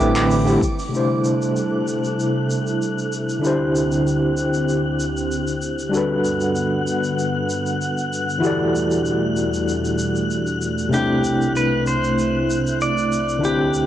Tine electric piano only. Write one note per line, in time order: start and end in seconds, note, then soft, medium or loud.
0.00 0.42 D3 medium
0.00 0.42 A3 medium
0.00 0.43 C4 medium
0.00 0.43 E4 medium
0.00 0.44 B4 medium
0.45 0.61 D3 medium
0.45 0.61 A3 medium
0.45 0.62 C4 medium
0.45 0.62 E4 medium
0.45 0.63 G4 medium
0.89 3.37 C3 medium
0.89 3.38 A3 medium
0.89 3.39 D4 medium
0.95 3.40 E4 medium
0.95 3.41 C5 medium
3.39 5.87 D3 medium
3.39 5.88 D4 medium
3.39 5.89 E4 medium
3.45 5.90 G4 medium
3.45 5.91 C5 medium
5.89 8.37 G3 medium
5.89 8.39 D4 medium
5.89 8.39 F#4 medium
5.95 8.40 A4 medium
5.95 8.42 B4 medium
8.39 10.87 E3 medium
8.39 10.88 E4 medium
8.39 10.89 F#4 medium
8.43 10.90 G4 medium
8.43 10.90 A4 medium
8.43 10.91 D5 medium
10.89 13.37 C3 medium
10.89 13.38 A3 medium
10.89 13.39 D4 medium
10.95 13.41 C4 medium
10.95 13.40 E4 medium
13.39 13.86 D3 medium
13.39 13.86 D4 medium
13.43 13.86 C4 medium
13.43 13.86 E4 medium
13.43 13.86 G4 medium